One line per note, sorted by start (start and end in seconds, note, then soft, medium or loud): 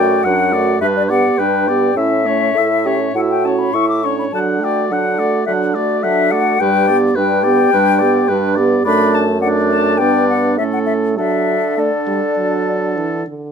0.00 0.20 F#2 medium
0.00 0.27 A3 soft
0.00 0.28 F#4 soft
0.00 0.26 D5 soft
0.00 0.24 G5 medium
0.23 0.75 F#2 medium
0.23 0.54 F#3 soft
0.23 0.55 D4 soft
0.23 0.80 F#5 medium
0.23 0.54 F#5 soft
0.53 0.81 A3 soft
0.53 0.81 F#4 soft
0.53 0.80 D5 soft
0.80 1.23 G2 medium
0.80 1.11 G3 soft
0.80 1.11 D4 soft
0.80 1.11 B4 soft
0.80 0.86 E5 medium
0.97 1.03 D5 medium
1.09 1.40 B3 soft
1.09 1.42 G4 soft
1.09 1.40 D5 soft
1.09 1.41 F#5 medium
1.38 1.90 G2 medium
1.38 1.69 G3 soft
1.38 1.70 D4 soft
1.38 1.69 B4 soft
1.38 1.99 G5 medium
1.68 1.95 B3 soft
1.68 1.96 G4 soft
1.68 1.96 D5 soft
1.95 2.49 A2 soft
1.95 2.26 C#4 soft
1.95 2.27 E4 soft
1.95 2.28 E5 soft
1.95 3.15 E5 medium
2.25 2.54 A3 soft
2.25 2.57 C#4 soft
2.25 2.59 C#5 soft
2.54 3.08 A2 soft
2.54 2.87 E4 soft
2.54 2.68 A4 soft
2.54 2.88 E5 soft
2.85 3.14 C#4 soft
2.85 2.99 G4 soft
2.85 3.16 C#5 soft
3.14 3.67 A2 soft
3.14 3.46 E4 soft
3.14 3.75 F#4 soft
3.14 3.48 E5 soft
3.14 3.21 F#5 medium
3.30 3.47 G5 soft
3.45 3.75 C#4 soft
3.45 3.77 C#5 soft
3.45 3.60 A5 soft
3.59 3.75 B5 soft
3.73 4.26 A2 soft
3.73 4.04 E4 soft
3.73 4.05 E4 soft
3.73 4.07 E5 soft
3.73 3.88 C#6 medium
3.89 4.05 D6 soft
4.03 4.32 C#4 soft
4.03 4.32 D4 soft
4.03 4.34 C#5 soft
4.03 4.18 C#6 soft
4.19 4.25 B5 soft
4.32 4.84 D3 soft
4.32 4.62 F#3 soft
4.32 4.65 D4 soft
4.32 4.66 F#5 soft
4.32 4.39 A5 medium
4.60 4.91 A3 soft
4.60 4.94 F#4 soft
4.60 4.89 G5 soft
4.64 4.94 D5 soft
4.89 5.41 D3 soft
4.89 5.20 F#3 soft
4.89 5.21 D4 soft
4.89 5.45 F#5 soft
4.89 5.20 F#5 soft
5.18 5.47 A3 soft
5.18 5.46 F#4 soft
5.18 5.46 D5 soft
5.46 5.97 D3 soft
5.46 5.77 F#3 soft
5.46 5.77 D4 soft
5.46 5.52 E5 medium
5.46 5.77 F#5 soft
5.73 6.05 A3 soft
5.73 6.05 F#4 soft
5.73 6.01 D5 medium
5.73 6.05 D5 soft
6.01 6.54 D3 medium
6.01 6.34 F#3 soft
6.01 6.32 D4 soft
6.01 6.32 E5 medium
6.01 6.33 F#5 soft
6.31 6.61 A3 soft
6.31 6.60 F#4 soft
6.31 6.59 D5 soft
6.31 6.62 F#5 medium
6.60 7.10 G2 medium
6.60 6.91 G3 soft
6.60 6.90 D4 soft
6.60 6.89 B4 soft
6.60 6.97 G5 medium
6.87 7.20 B3 soft
6.87 7.19 G4 soft
6.87 7.17 D5 soft
7.15 7.59 G2 medium
7.15 7.46 G3 soft
7.15 7.47 D4 soft
7.15 7.45 B4 soft
7.15 8.54 G5 medium
7.43 7.73 B3 soft
7.43 7.73 G4 soft
7.43 7.71 D5 soft
7.72 8.23 G2 medium
7.72 8.03 G3 soft
7.72 8.03 D4 soft
7.72 8.00 B4 soft
7.99 8.31 B3 soft
7.99 8.32 G4 soft
7.99 8.29 D5 soft
8.28 8.79 G2 medium
8.28 8.58 G3 soft
8.28 8.59 D4 medium
8.28 8.57 B4 soft
8.55 8.85 B3 soft
8.55 8.85 G4 soft
8.55 8.84 D5 soft
8.84 10.02 F#2 medium
8.84 9.38 A3 medium
8.84 9.27 D4 medium
8.84 9.25 D5 medium
8.84 9.16 B5 medium
9.15 9.41 A5 medium
9.41 10.01 A3 soft
9.41 9.99 D4 soft
9.41 9.98 D5 soft
9.41 9.48 F#5 medium
9.69 9.99 A5 medium
9.98 10.60 G2 soft
9.98 10.59 B3 soft
9.98 10.58 D4 soft
9.98 10.57 D5 soft
9.98 10.28 G5 medium
10.29 10.57 F#5 medium
10.58 11.18 A2 soft
10.58 11.19 A3 soft
10.58 11.17 C#4 soft
10.58 11.16 A4 soft
10.58 10.64 E5 medium
10.73 10.79 F#5 soft
10.86 10.93 E5 soft
11.17 13.24 D3 soft
11.17 11.60 F#3 soft
11.17 11.76 D4 soft
11.17 11.76 A4 soft
11.17 11.81 E5 soft
11.76 11.91 A3 soft
11.76 13.24 D4 soft
11.76 13.24 A4 soft
11.76 12.98 D5 soft
12.07 12.20 G3 soft
12.38 12.98 F#3 soft
12.97 13.27 E3 soft
13.27 13.52 D3 soft